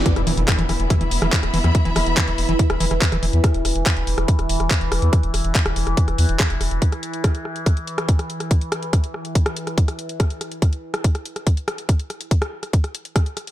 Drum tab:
HH |xxoxxxoxxxoxxxox|xxoxxxoxxxoxxxox|xxoxxxoxxxoxxxox|xxoxxxoxxxoxxxox|
CP |----x-------x---|----x-------x---|----x-------x---|----x-------x---|
SD |-r--r-r-r--r-r-r|--r-r----r-r-r--|r-r-r--r-r-r--r-|r-r--r-r-r--r-r-|
BD |o---o---o---o---|o---o---o---o---|o---o---o---o---|o---o---o---o---|

HH |xxxxxx-xxxxxxxxx|xxxxxx-xxxxxxxxx|xxxxxx-xxxxxxxxx|xxxxxx-xxxxxxxxx|
CP |----------------|----------------|----------------|----------------|
SD |-r--r-r-r--r-r-r|--r-r-r--r-r-r--|r-r-r--r-r-r--r-|r-r--r-r-r--r-r-|
BD |o---o---o---o---|o---o---o---o---|o---o---o---o---|o---o---o---o---|